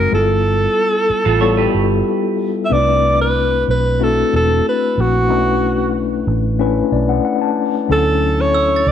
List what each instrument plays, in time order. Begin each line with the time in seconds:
Already playing: tine electric piano G#3 C4 D#4 F#4 A#4, alto saxophone A#4
0.11 fingered electric bass G1, tine electric piano G3 B3 E4 F4 G#4, alto saxophone A4
0.20 tine electric piano A4
1.10 muted fingered electric bass stroke
1.25 fingered electric bass A1, clean electric guitar F4 A4
1.41 tine electric piano G3 B3 E4 F4 A4, clean electric guitar A4 C#5
1.57 clean electric guitar G4 B4
1.74 fingered electric bass G1
2.65 alto saxophone E5
2.69 fingered electric bass C2, tine electric piano A3 C4 D4 D#4 B4, alto saxophone D5
2.77 tine electric piano E4
3.21 alto saxophone B4
3.68 fingered electric bass B1, alto saxophone B4
3.99 tine electric piano A3 C4 D4 E4 F#4
4.03 alto saxophone A4
4.33 fingered electric bass E1, alto saxophone A4
4.69 alto saxophone B4
4.98 fingered electric bass A#1, alto saxophone F#4
5.29 fingered electric bass B1, tine electric piano A3 C#4 D4 E4 B4
6.27 fingered electric bass A1
6.59 tine electric piano A3 C#4 D4 E4 B4
6.92 fingered electric bass B1, tine electric piano D5
7.09 tine electric piano F#5
7.25 tine electric piano F#5
7.41 tine electric piano A5
7.89 fingered electric bass D2, tine electric piano F#3 C#4 D4 E4 A4, alto saxophone A4
8.41 alto saxophone C#5
8.54 glockenspiel E6
8.76 glockenspiel A6
8.86 fingered electric bass C#2, alto saxophone D5